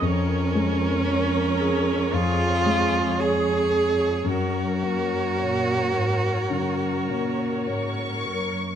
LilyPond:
<<
  \new Staff \with { instrumentName = "Violin section" } { \time 4/4 \key fis \major \tempo 4 = 54 r1 | r2. cis'''4 | }
  \new Staff \with { instrumentName = "Viola section" } { \time 4/4 \key fis \major << { cis''2. cis''4 | cis''1 | } \\ { ais'2 gis'4 gis'4 | ais'1 | } >> }
  \new Staff \with { instrumentName = "Cello" } { \time 4/4 \key fis \major cis'2 eis'4 gis'4 | fis'2.~ fis'8 r8 | }
  \new Staff \with { instrumentName = "Grand piano" } { \time 4/4 \key fis \major eis,8 gis8 cis''8 gis'8 eis,8 gis8 cis''8 gis'8 | fis,8 ais8 cis''8 ais'8 cis8 ais8 cis''8 ais'8 | }
  \new Staff \with { instrumentName = "Cello section" } { \clef bass \time 4/4 \key fis \major eis,1 | fis,4 ais,8 gis,8 fis,8 ais,8 gis,8 fis,8 | }
>>